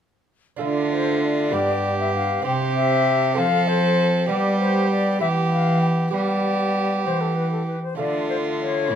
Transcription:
0.56 1.48 D4 soft
0.56 1.49 F4 soft
0.56 1.50 A4 soft
0.61 1.49 D3 soft
0.61 1.54 D3 medium
0.61 1.55 A3 medium
0.61 1.55 F4 medium
0.61 0.94 D5 medium
0.93 1.23 C5 medium
1.23 1.98 D5 medium
1.49 2.44 G2 medium
1.49 2.40 D4 soft
1.49 2.41 G4 soft
1.49 2.42 B4 soft
1.53 2.41 G2 medium
1.53 2.45 B3 medium
1.53 2.45 G4 medium
2.00 2.15 E5 medium
2.15 2.45 F5 medium
2.42 3.38 C3 medium
2.42 3.33 C3 medium
2.42 3.32 C4 soft
2.42 3.35 C4 medium
2.42 3.33 G4 soft
2.42 3.34 C5 soft
2.46 3.40 G4 medium
2.46 2.53 G5 medium
2.75 3.36 E5 medium
3.33 4.31 F3 medium
3.33 4.25 F3 medium
3.33 4.24 C4 soft
3.33 4.30 C4 medium
3.33 4.25 A4 soft
3.33 4.26 C5 soft
3.33 3.69 F5 loud
3.38 4.29 A4 medium
3.68 4.29 C5 medium
4.26 5.22 G3 medium
4.26 5.17 G3 medium
4.26 5.20 B3 medium
4.26 5.17 G4 soft
4.26 5.20 G4 medium
4.26 5.18 D5 soft
4.26 4.59 D5 medium
4.60 4.90 C5 medium
4.91 5.20 D5 medium
5.19 6.12 E3 medium
5.19 6.09 E3 soft
5.19 6.11 B3 medium
5.19 6.09 G4 soft
5.19 6.12 G4 medium
5.19 6.10 B4 soft
5.19 5.28 E5 medium
5.52 5.81 F5 medium
5.82 5.89 G5 medium
6.11 7.07 G3 medium
6.11 7.02 G3 soft
6.11 7.64 B3 medium
6.11 7.93 G4 soft
6.11 7.75 G4 medium
6.11 7.94 B4 soft
6.11 7.04 D5 medium
7.06 7.78 E3 medium
7.06 7.75 E3 soft
7.06 7.22 C5 medium
7.21 7.37 A4 medium
7.35 7.51 B4 medium
7.52 7.66 A4 medium
7.67 7.82 B4 medium
7.83 7.98 C5 medium
7.95 8.92 D3 medium
7.95 8.87 D3 soft
7.95 8.86 A3 soft
7.95 8.87 A3 medium
7.95 8.87 F4 soft
7.95 8.93 F4 medium
7.95 8.88 A4 soft
7.95 8.29 D5 medium
8.30 8.36 C5 medium
8.61 8.95 C#5 medium
8.87 8.95 A2 soft
8.87 8.95 A2 medium
8.87 8.95 E3 soft
8.87 8.95 A3 soft
8.87 8.95 A3 medium
8.87 8.95 A4 soft
8.91 8.95 E4 medium

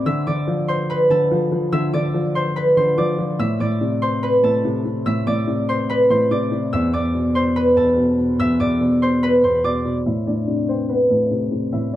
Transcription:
0.00 0.69 C5 medium
0.00 0.27 D5 medium
0.00 0.68 C6 medium
0.00 0.26 D6 medium
0.06 0.26 D3 medium
0.06 1.73 E5 medium
0.06 1.20 E6 loud
0.27 1.08 D3 medium
0.27 1.94 D5 medium
0.27 1.49 D6 medium
0.48 1.30 F3 medium
0.68 0.96 C5 medium
0.68 0.96 C6 medium
0.90 2.41 B4 medium
0.90 2.25 B5 medium
1.10 1.71 D3 medium
1.10 3.31 A4 medium
1.10 2.55 A5 medium
1.31 1.51 F3 medium
1.52 2.13 F3 medium
1.72 1.92 D3 medium
1.72 3.40 E5 medium
1.72 2.86 E6 loud
1.93 2.75 D3 medium
1.93 2.98 D5 medium
1.93 2.97 D6 medium
2.14 2.96 F3 medium
2.35 2.62 C5 medium
2.35 2.62 C6 medium
2.56 2.83 B4 medium
2.56 2.83 B5 medium
2.77 3.39 D3 medium
2.77 4.02 C5 medium
2.77 4.02 C6 medium
2.98 3.17 F3 medium
2.98 3.61 D5 medium
2.98 3.60 D6 medium
3.18 3.39 F3 medium
3.39 3.58 A2 medium
3.39 5.06 E5 medium
3.39 4.53 E6 loud
3.60 4.42 A2 medium
3.60 5.27 D5 medium
3.60 4.82 D6 medium
3.81 4.63 C3 medium
4.02 4.29 C5 medium
4.02 4.29 C6 medium
4.23 5.75 B4 medium
4.23 5.58 B5 medium
4.43 5.04 A2 medium
4.43 6.64 A4 medium
4.43 5.88 A5 medium
4.65 4.84 C3 medium
4.85 5.46 C3 medium
5.06 5.25 A2 medium
5.06 6.73 E5 medium
5.06 6.20 E6 loud
5.27 6.09 A2 medium
5.27 6.32 D5 medium
5.27 6.31 D6 medium
5.47 6.30 C3 medium
5.69 5.96 C5 medium
5.69 5.96 C6 medium
5.90 6.16 B4 medium
5.90 6.16 B5 medium
6.10 6.73 A2 medium
6.10 7.35 C5 medium
6.10 7.35 C6 medium
6.31 6.50 C3 medium
6.31 6.94 D5 medium
6.31 6.93 D6 medium
6.52 6.73 C3 medium
6.73 6.92 E2 loud
6.73 8.40 E5 medium
6.73 7.86 E6 loud
6.93 7.75 E2 medium
6.93 8.60 D5 medium
6.93 8.15 D6 medium
7.15 7.96 B2 medium
7.35 7.62 C5 medium
7.35 7.62 C6 medium
7.56 9.08 B4 medium
7.56 8.91 B5 loud
7.77 8.38 E2 medium
7.77 9.97 A4 medium
7.77 9.22 A5 medium
7.98 8.17 B2 medium
8.19 8.79 B2 medium
8.39 8.59 E2 medium
8.39 10.06 E5 medium
8.39 9.53 E6 loud
8.60 9.42 E2 medium
8.60 9.65 D5 medium
8.60 9.64 D6 medium
8.81 9.63 B2 medium
9.02 9.29 C5 medium
9.02 9.29 C6 medium
9.23 9.50 B4 medium
9.23 9.50 B5 medium
9.44 10.06 E2 medium
9.44 10.68 C5 medium
9.44 10.74 C6 medium
9.64 9.84 B2 medium
9.64 10.26 D5 medium
9.64 10.86 D6 medium
9.85 10.06 B2 medium
10.06 10.26 A2 medium
10.06 11.73 E4 medium
10.06 11.72 E5 loud
10.27 11.09 A2 medium
10.27 11.94 D4 medium
10.27 11.93 D5 medium
10.48 11.30 C3 medium
10.69 10.95 C4 medium
10.69 10.95 C5 medium
10.89 11.96 B3 medium
10.89 11.96 B4 medium
11.10 11.71 A2 medium
11.10 11.96 A3 medium
11.10 11.96 A4 medium
11.31 11.50 C3 medium
11.52 11.96 C3 medium
11.72 11.92 A2 medium
11.72 11.96 E4 medium
11.72 11.96 E5 loud

